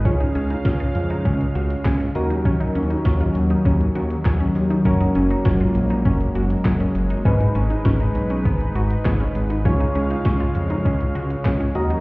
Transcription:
Already playing: analog synth pad G#3
0.05 analog synth bass C#2, analog synth pad C#3 F5, synth keys C#4 F4 G#4, synth arpeggio sound C#4, kick, closed hi-hat
0.20 synth arpeggio sound D#4, closed hi-hat
0.35 analog synth bass C#2, synth arpeggio sound C#4, closed hi-hat
0.50 synth arpeggio sound D#4, closed hi-hat
0.65 analog synth bass C#2, synth arpeggio sound C#4, kick, snare, closed hi-hat
0.80 synth arpeggio sound F4, closed hi-hat
0.95 analog synth bass F2, closed hi-hat
1.10 synth arpeggio sound D#4, closed hi-hat
1.25 analog synth bass C#2, synth arpeggio sound C#4, kick, closed hi-hat
1.41 closed hi-hat
1.55 analog synth bass C#2, synth arpeggio sound F#4, closed hi-hat
1.70 closed hi-hat
1.85 analog synth bass C#2, synth arpeggio sound G#4, kick, snare, clap, closed hi-hat
2.00 synth arpeggio sound C#4, closed hi-hat
2.15 analog synth bass D#2, analog synth pad D#3 F#3 C#4, synth keys D#4 F#4 A#4, closed hi-hat
2.30 synth arpeggio sound D#4, closed hi-hat
2.45 synth arpeggio sound C#4, kick, closed hi-hat
2.60 synth arpeggio sound D#4, closed hi-hat
2.75 analog synth bass D#2, synth arpeggio sound C#4, closed hi-hat
2.90 synth arpeggio sound D#4, closed hi-hat
3.05 analog synth bass D#2, synth arpeggio sound C#4, kick, snare, closed hi-hat
3.20 synth arpeggio sound F4, closed hi-hat
3.35 analog synth bass D#2, closed hi-hat
3.50 synth arpeggio sound D#4, closed hi-hat
3.65 analog synth bass D#2, synth arpeggio sound C#4, kick, closed hi-hat
3.81 closed hi-hat
3.95 analog synth bass D#2, synth arpeggio sound F#4, closed hi-hat
4.10 closed hi-hat
4.25 analog synth bass D#2, synth arpeggio sound G#4, kick, snare, clap, closed hi-hat
4.40 synth arpeggio sound C#4, closed hi-hat
4.55 analog synth bass D#2, open hi-hat
4.70 synth arpeggio sound D#4, closed hi-hat
4.85 analog synth bass F#1, analog synth pad G#3 A#3, synth arpeggio sound C#4, synth keys C#4 F#4 A#4, kick, closed hi-hat
5.00 synth arpeggio sound D#4, closed hi-hat
5.15 analog synth bass F#1, synth arpeggio sound C#4, closed hi-hat
5.30 synth arpeggio sound D#4, closed hi-hat
5.45 analog synth bass F#1, synth arpeggio sound C#4, kick, snare, closed hi-hat
5.60 synth arpeggio sound F4, closed hi-hat
5.75 analog synth bass A#1, closed hi-hat
5.90 synth arpeggio sound D#4, closed hi-hat
6.05 analog synth bass F#1, synth arpeggio sound C#4, kick, closed hi-hat
6.21 closed hi-hat
6.35 analog synth bass F#1, synth arpeggio sound F#4, closed hi-hat
6.50 closed hi-hat
6.65 analog synth bass F#1, synth arpeggio sound G#4, kick, snare, clap, closed hi-hat
6.80 synth arpeggio sound C#4, closed hi-hat
6.95 analog synth bass F#1, closed hi-hat
7.10 synth arpeggio sound D#4, closed hi-hat
7.25 analog synth bass G#1, synth arpeggio sound C#4, synth keys D#4 G#4 B4, analog synth pad D#4 B4, kick, closed hi-hat
7.40 synth arpeggio sound D#4, closed hi-hat
7.55 analog synth bass G#1, synth arpeggio sound C#4, closed hi-hat
7.70 synth arpeggio sound D#4, closed hi-hat
7.85 analog synth bass G#1, synth arpeggio sound C#4, kick, snare, closed hi-hat
8.00 synth arpeggio sound D#4, closed hi-hat
8.15 analog synth bass B1, closed hi-hat
8.30 synth arpeggio sound C#4, closed hi-hat
8.45 analog synth bass G#1, synth arpeggio sound B3, kick, closed hi-hat
8.61 closed hi-hat
8.75 analog synth bass G#1, synth arpeggio sound F#4, closed hi-hat
8.90 closed hi-hat
9.05 analog synth bass G#1, synth arpeggio sound G#4, kick, snare, clap, closed hi-hat
9.20 synth arpeggio sound C#4, closed hi-hat
9.35 analog synth bass G#1, closed hi-hat
9.50 synth arpeggio sound D#4, closed hi-hat
9.65 analog synth bass C#2, analog synth pad C#3 G#3 F5, synth arpeggio sound C#4, synth keys F4 G#4 C#5, kick, closed hi-hat
9.80 synth arpeggio sound D#4, closed hi-hat
9.95 analog synth bass C#2, synth arpeggio sound C#4, closed hi-hat
10.10 synth arpeggio sound D#4, closed hi-hat
10.25 analog synth bass C#2, synth arpeggio sound C#4, kick, snare, closed hi-hat
10.40 synth arpeggio sound F4, closed hi-hat
10.55 analog synth bass F2, closed hi-hat
10.70 synth arpeggio sound D#4, closed hi-hat
10.85 analog synth bass C#2, synth arpeggio sound C#4, kick, closed hi-hat
11.01 closed hi-hat
11.15 analog synth bass C#2, synth arpeggio sound F#4, closed hi-hat
11.30 closed hi-hat
11.45 analog synth bass C#2, synth arpeggio sound G#4, kick, snare, clap, closed hi-hat
11.60 synth arpeggio sound C#4, closed hi-hat
11.75 analog synth bass D#2, analog synth pad D#3 F#3 C#4, synth keys F#4 A#4 D#5, closed hi-hat
11.90 synth arpeggio sound D#4, closed hi-hat

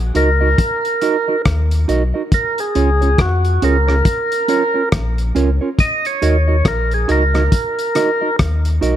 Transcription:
Already playing: sub bass A#1
0.15 sub bass C#2, clean electric guitar D#4 F#4 A#4 D#5, tonewheel organ A#4, closed hi-hat
0.41 clean electric guitar D#4 F#4 A#4 D#5
0.58 kick, closed hi-hat
0.85 closed hi-hat
1.01 clean electric guitar D#4 F#4 A#4 D#5, closed hi-hat
1.28 clean electric guitar D#4 F#4 A#4 D#5
1.45 sub bass D#2, kick, cross-stick, closed hi-hat
1.71 closed hi-hat
1.88 sub bass B1, clean electric guitar D#4 F#4 A#4 D#5, closed hi-hat
2.14 clean electric guitar D#4 F#4 A#4 D#5
2.32 tonewheel organ A#4, kick, closed hi-hat
2.58 tonewheel organ G#4, closed hi-hat
2.75 sub bass C#2, clean electric guitar C#4 F4 G#4 C#5, closed hi-hat
3.01 clean electric guitar C#4 F4 G#4 C#5, closed hi-hat
3.18 sub bass F2, tonewheel organ F#4, kick, cross-stick, closed hi-hat
3.45 closed hi-hat
3.62 sub bass C#2, clean electric guitar C#4 F4 G#4 C#5, tonewheel organ A#4, closed hi-hat
3.87 clean electric guitar C#4 F4 G#4 C#5, cross-stick
4.05 kick, closed hi-hat
4.32 closed hi-hat
4.48 clean electric guitar C#4 F4 A#4 C#5, closed hi-hat
4.74 clean electric guitar C#4 F4 A#4 C#5
4.92 sub bass A#1, kick, cross-stick, closed hi-hat
5.18 closed hi-hat
5.35 sub bass C#2, clean electric guitar C#4 F4 A#4 C#5, closed hi-hat
5.61 clean electric guitar C#4 F4 A#4 C#5
5.79 tonewheel organ D#5, kick, closed hi-hat
6.05 tonewheel organ C#5, closed hi-hat
6.22 sub bass D#2, clean electric guitar D#4 F#4 A#4 D#5, closed hi-hat
6.48 clean electric guitar D#4 F#4 A#4 D#5
6.65 sub bass A#1, tonewheel organ A#4, kick, cross-stick, closed hi-hat
6.91 tonewheel organ G#4, closed hi-hat
7.08 sub bass C#2, clean electric guitar D#4 F#4 A#4 D#5, tonewheel organ A#4, closed hi-hat
7.34 clean electric guitar D#4 F#4 A#4 D#5, cross-stick, closed hi-hat
7.52 kick, closed hi-hat
7.79 closed hi-hat
7.95 clean electric guitar D#4 F#4 A#4 D#5, cross-stick, closed hi-hat
8.21 clean electric guitar D#4 F#4 A#4 D#5
8.39 sub bass D#2, kick, cross-stick, closed hi-hat
8.65 closed hi-hat
8.81 sub bass B1, clean electric guitar D#4 F#4 A#4 D#5, closed hi-hat

